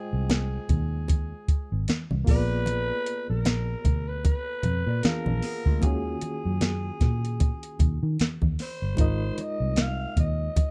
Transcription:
0.00 2.22 G#3 medium
0.00 2.23 F4 medium
0.00 1.90 G#4 medium
0.00 2.25 C5 medium
0.00 2.25 D#5 medium
0.00 2.24 G5 medium
0.13 0.58 C2 loud
0.30 snare medium
0.30 closed hi-hat medium
0.30 high conga medium
0.69 1.32 D#2 loud
0.69 kick medium
0.69 closed hi-hat medium
0.69 low conga medium
1.08 kick loud
1.08 closed hi-hat medium
1.08 muted conga medium
1.48 muted fingered electric bass stroke soft
1.48 kick loud
1.48 closed hi-hat medium
1.72 1.85 G#1 loud
1.88 snare loud
1.88 closed hi-hat medium
1.88 high conga medium
2.11 2.24 C2 medium
2.11 high conga medium
2.25 2.90 A#1 loud
2.25 4.99 A#3 medium
2.25 5.00 F4 medium
2.25 5.00 G#4 medium
2.25 kick loud
2.25 snare soft
2.25 open hi-hat medium
2.29 5.01 B3 medium
2.29 3.26 B4 loud
2.29 5.02 D5 medium
2.66 closed hi-hat medium
2.66 muted conga medium
3.06 closed hi-hat medium
3.30 3.74 A#1 loud
3.30 4.10 A#4 loud
3.45 snare loud
3.45 closed hi-hat medium
3.45 high conga medium
3.85 4.35 D2 medium
3.85 kick medium
3.85 closed hi-hat medium
3.85 low conga medium
4.08 4.24 B4 medium
4.25 5.05 B4 loud
4.25 kick loud
4.25 closed hi-hat medium
4.25 muted conga medium
4.63 4.83 F2 medium
4.63 closed hi-hat medium
4.63 low conga medium
4.87 5.00 A#2 loud
4.87 5.04 F4 medium
4.87 5.04 D5 medium
5.03 5.80 A#3 soft
5.03 5.84 B3 soft
5.03 5.26 D4 medium
5.03 5.81 F4 soft
5.03 5.83 G#4 soft
5.03 5.84 A#4 loud
5.03 5.26 B4 medium
5.03 5.84 F5 medium
5.03 muted fingered electric bass stroke soft
5.03 snare loud
5.03 closed hi-hat medium
5.03 high conga medium
5.26 5.40 A#1 medium
5.26 5.43 D4 medium
5.26 5.43 A#4 medium
5.26 high conga medium
5.42 5.66 B3 medium
5.42 5.65 G#4 medium
5.42 snare soft
5.42 open hi-hat medium
5.66 5.83 D2 medium
5.66 6.05 G#3 medium
5.66 6.04 F4 medium
5.66 kick medium
5.80 6.14 D#2 loud
5.80 8.93 D#3 medium
5.80 8.94 A#3 medium
5.80 8.94 F4 medium
5.80 8.95 F#4 medium
5.80 8.20 G#4 medium
5.80 kick loud
5.80 closed hi-hat medium
5.80 muted conga soft
5.85 8.96 C#4 medium
5.85 8.96 G#4 medium
6.21 closed hi-hat medium
6.21 muted conga soft
6.45 6.90 F#2 medium
6.61 snare loud
6.61 closed hi-hat medium
6.61 high conga medium
7.01 7.51 A#2 medium
7.01 kick medium
7.01 snare soft
7.01 closed hi-hat medium
7.01 low conga medium
7.25 closed hi-hat medium
7.40 kick loud
7.40 closed hi-hat medium
7.40 muted conga medium
7.63 closed hi-hat medium
7.79 7.98 D#2 medium
7.79 kick medium
7.79 closed hi-hat medium
7.79 low conga medium
8.03 8.16 D#3 loud
8.19 muted fingered electric bass stroke soft
8.19 snare loud
8.19 closed hi-hat medium
8.19 high conga medium
8.42 8.56 D#2 medium
8.42 kick medium
8.42 high conga medium
8.59 9.43 C5 medium
8.59 snare soft
8.59 open hi-hat medium
8.82 8.95 G1 medium
8.95 9.30 G#1 loud
8.95 10.71 G#3 medium
8.95 10.71 D#4 medium
8.95 10.71 F4 medium
8.95 kick loud
8.95 closed hi-hat medium
8.95 muted conga medium
9.00 10.71 A#4 medium
9.00 10.71 D#5 medium
9.38 9.83 D#5 loud
9.38 closed hi-hat medium
9.38 muted conga soft
9.60 10.05 C2 medium
9.76 snare loud
9.76 closed hi-hat medium
9.76 high conga medium
9.81 10.19 F5 loud
10.17 10.48 D#2 medium
10.17 10.71 D#5 loud
10.17 kick medium
10.17 closed hi-hat medium
10.17 low conga medium
10.56 kick loud
10.56 closed hi-hat medium
10.56 muted conga medium

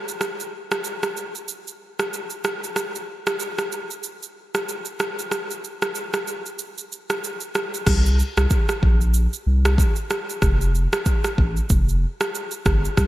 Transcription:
0.08 shaker medium
0.21 cross-stick medium
0.21 shaker medium
0.40 shaker medium
0.71 cross-stick loud
0.71 shaker soft
0.84 shaker medium
1.03 cross-stick medium
1.03 shaker soft
1.17 shaker medium
1.35 shaker soft
1.48 shaker medium
1.67 shaker medium
1.99 cross-stick medium
1.99 shaker medium
2.13 shaker medium
2.30 shaker medium
2.44 cross-stick medium
2.44 shaker medium
2.64 shaker medium
2.76 cross-stick medium
2.76 shaker medium
2.95 shaker medium
3.27 cross-stick loud
3.27 shaker soft
3.40 shaker medium
3.58 cross-stick medium
3.58 shaker soft
3.72 shaker medium
3.91 shaker soft
4.03 shaker medium
4.23 shaker medium
4.55 cross-stick medium
4.55 shaker medium
4.69 shaker medium
4.85 shaker medium
5.00 cross-stick medium
5.00 shaker soft
5.19 shaker medium
5.32 cross-stick medium
5.32 shaker medium
5.51 shaker medium
5.64 shaker soft
5.82 cross-stick medium
5.82 shaker soft
5.95 shaker medium
6.14 cross-stick medium
6.14 shaker soft
6.27 shaker medium
6.46 shaker soft
6.59 shaker medium
6.78 shaker medium
6.92 shaker soft
7.10 cross-stick medium
7.10 shaker medium
7.24 shaker medium
7.40 shaker medium
7.55 cross-stick medium
7.55 shaker medium
7.74 shaker medium
7.87 8.22 C2 loud
7.87 kick loud
7.87 cross-stick medium
7.87 crash medium
7.87 shaker medium
8.06 shaker medium
8.19 shaker soft
8.37 8.47 C2 medium
8.37 cross-stick loud
8.37 shaker medium
8.50 kick medium
8.50 shaker medium
8.69 cross-stick medium
8.69 shaker soft
8.83 9.28 A#1 medium
8.83 kick medium
9.01 shaker soft
9.14 shaker medium
9.33 shaker medium
9.47 9.82 C2 loud
9.65 cross-stick loud
9.65 shaker medium
9.78 kick loud
9.78 shaker medium
9.96 shaker medium
10.10 cross-stick medium
10.10 shaker medium
10.30 shaker medium
10.42 10.87 F1 loud
10.42 kick loud
10.42 cross-stick medium
10.42 shaker medium
10.61 shaker medium
10.75 shaker soft
10.93 cross-stick loud
10.93 shaker medium
11.06 kick medium
11.06 shaker medium
11.24 cross-stick medium
11.24 shaker soft
11.38 11.61 A1 medium
11.38 kick medium
11.57 shaker soft
11.70 12.06 F1 loud
11.70 kick loud
11.70 shaker medium
11.89 shaker medium
12.21 cross-stick loud
12.21 shaker medium
12.35 shaker medium
12.51 shaker medium
12.66 12.88 G1 medium
12.66 kick medium
12.66 cross-stick medium
12.66 shaker medium
12.85 shaker medium
12.97 13.07 C2 loud
12.97 kick loud
12.97 cross-stick medium
12.97 shaker medium

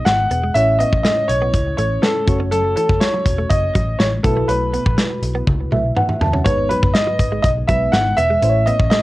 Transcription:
0.00 0.57 G#2 medium
0.00 0.51 B3 medium
0.00 0.51 D#4 medium
0.00 0.52 G#4 medium
0.00 0.52 D#5 medium
0.05 0.25 G#1 medium
0.05 0.56 F#5 loud
0.05 muted clean electric guitar stroke soft
0.05 snare loud
0.05 closed hi-hat medium
0.31 0.49 E1 medium
0.31 0.40 B3 medium
0.31 closed hi-hat medium
0.43 0.53 G#3 medium
0.54 0.83 A1 loud
0.54 1.25 A2 medium
0.54 2.23 A3 medium
0.54 2.24 C#4 medium
0.54 0.65 C#4 medium
0.54 2.24 E4 medium
0.54 2.25 C#5 medium
0.54 0.80 E5 loud
0.54 closed hi-hat medium
0.79 0.89 B3 medium
0.79 1.02 D#5 medium
0.79 closed hi-hat medium
0.93 1.02 A1 medium
0.93 muted clean electric guitar stroke soft
0.93 kick medium
1.03 1.14 A3 medium
1.03 1.27 D#5 medium
1.03 snare loud
1.03 closed hi-hat medium
1.17 muted clean electric guitar stroke soft
1.28 1.54 B1 medium
1.28 1.76 C#5 medium
1.28 closed hi-hat medium
1.42 1.51 B3 medium
1.54 1.72 C#2 medium
1.54 kick medium
1.54 closed hi-hat medium
1.77 1.97 A1 medium
1.77 1.88 A3 medium
1.77 2.03 C#5 medium
1.77 closed hi-hat medium
2.02 2.12 B3 medium
2.02 2.37 A4 medium
2.02 snare loud
2.02 closed hi-hat medium
2.26 2.74 F#1 medium
2.26 4.20 A3 medium
2.26 4.20 C#4 medium
2.26 4.20 F#4 medium
2.26 4.21 C#5 medium
2.26 muted clean electric guitar stroke soft
2.26 kick loud
2.26 closed hi-hat medium
2.40 2.49 C#4 medium
2.51 2.61 F#3 medium
2.51 2.74 A4 medium
2.51 closed hi-hat medium
2.64 muted clean electric guitar stroke soft
2.76 2.86 E3 medium
2.76 3.02 A4 medium
2.76 closed hi-hat medium
2.89 2.98 F#1 medium
2.89 kick medium
3.00 3.52 C#5 medium
3.00 snare loud
3.00 closed hi-hat medium
3.14 3.23 F#3 medium
3.26 3.44 E1 medium
3.26 muted clean electric guitar stroke soft
3.26 kick medium
3.26 closed hi-hat medium
3.38 3.48 A3 medium
3.50 3.69 F#1 medium
3.50 4.01 D#5 medium
3.50 kick medium
3.50 closed hi-hat medium
3.75 3.94 A1 medium
3.75 3.84 F#3 medium
3.75 kick medium
3.75 closed hi-hat medium
3.99 4.18 A1 medium
3.99 4.04 C#5 medium
3.99 muted clean electric guitar stroke soft
3.99 snare loud
3.99 closed hi-hat medium
4.23 4.43 B1 medium
4.23 4.94 B2 medium
4.23 6.17 A3 medium
4.23 4.34 B3 medium
4.23 6.17 E4 medium
4.23 6.17 F#4 medium
4.23 4.49 A4 medium
4.23 6.18 B4 medium
4.23 kick loud
4.23 closed hi-hat medium
4.37 4.46 A3 medium
4.48 4.76 B1 loud
4.48 4.58 C#4 medium
4.48 4.94 B4 medium
4.48 closed hi-hat medium
4.74 4.83 B3 medium
4.74 closed hi-hat medium
4.86 4.95 A1 medium
4.86 muted clean electric guitar stroke soft
4.86 kick medium
4.98 5.07 A3 medium
4.98 snare loud
4.98 closed hi-hat medium
5.10 muted clean electric guitar stroke soft
5.22 5.41 B1 medium
5.22 closed hi-hat medium
5.35 5.44 B3 medium
5.47 5.66 C#2 medium
5.47 kick medium
5.47 high tom medium
5.72 5.90 B1 medium
5.72 5.81 A3 medium
5.72 5.95 E5 medium
5.72 mid tom medium
5.96 6.06 B3 medium
5.96 6.19 F#5 medium
5.96 mid tom medium
6.09 mid tom medium
6.21 6.39 D#2 medium
6.21 6.44 A5 medium
6.21 muted clean electric guitar stroke soft
6.21 floor tom loud
6.33 6.43 C#4 medium
6.33 floor tom medium
6.44 6.73 G#1 loud
6.44 7.15 G#2 medium
6.44 7.66 G#3 medium
6.44 6.55 G#3 medium
6.44 7.66 B3 medium
6.44 7.66 D#4 medium
6.44 7.67 B4 medium
6.44 6.68 C#5 medium
6.44 kick loud
6.44 closed hi-hat medium
6.58 muted clean electric guitar stroke soft
6.69 6.80 F#3 medium
6.69 6.92 B4 medium
6.69 closed hi-hat medium
6.83 6.92 F#1 medium
6.83 kick medium
6.94 7.40 D#5 medium
6.94 snare loud
6.94 closed hi-hat medium
7.07 7.16 F#3 medium
7.19 7.38 G#1 medium
7.19 muted clean electric guitar stroke soft
7.19 kick medium
7.19 closed hi-hat medium
7.32 7.41 G#3 medium
7.42 7.62 B1 loud
7.42 7.48 D#5 loud
7.42 kick medium
7.42 closed hi-hat medium
7.67 7.87 B1 medium
7.67 7.78 F#3 medium
7.67 8.42 G#3 soft
7.67 8.42 B3 soft
7.67 8.42 D#4 soft
7.67 8.43 B4 medium
7.67 7.93 E5 medium
7.67 kick medium
7.67 closed hi-hat medium
7.92 8.12 G#1 medium
7.92 8.15 F#5 loud
7.92 muted clean electric guitar stroke soft
7.92 snare loud
7.92 closed hi-hat medium
8.17 8.36 E1 medium
8.17 8.27 B3 medium
8.17 8.68 E5 loud
8.17 closed hi-hat medium
8.30 8.39 G#3 medium
8.41 8.70 A1 medium
8.41 9.02 A2 medium
8.41 9.02 A3 medium
8.41 9.02 C#4 medium
8.41 8.52 C#4 medium
8.41 9.02 E4 medium
8.41 8.49 C5 medium
8.41 closed hi-hat medium
8.49 9.02 C#5 medium
8.66 8.76 B3 medium
8.66 8.89 D#5 medium
8.66 closed hi-hat medium
8.79 8.89 A1 medium
8.79 muted clean electric guitar stroke soft
8.79 kick medium
8.90 9.01 A3 medium
8.90 9.02 D#5 loud
8.90 snare loud
8.90 closed hi-hat medium

